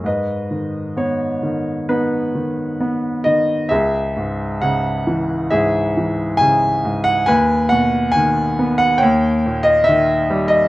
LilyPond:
<<
  \new Staff \with { instrumentName = "Grand piano" } { \time 4/4 \key gis \minor \tempo 4 = 67 << { dis''4 cis''4 b'4. dis''8 | e''4 fis''4 e''4 gis''8. fis''16 | gis''8 fis''8 gis''8. fis''16 g''8. dis''16 e''8. dis''16 | } \\ { b'2 dis'2 | gis'2 gis'2 | b'2 cis''2 | } >> }
  \new Staff \with { instrumentName = "Grand piano" } { \clef bass \time 4/4 \key gis \minor gis,8 dis8 b8 dis8 b8 dis8 b8 dis8 | cis,8 gis,8 cis8 e8 gis,8 e8 cis8 gis,8 | dis,8 b,8 dis8 b8 dis,8 ais,8 dis8 g8 | }
>>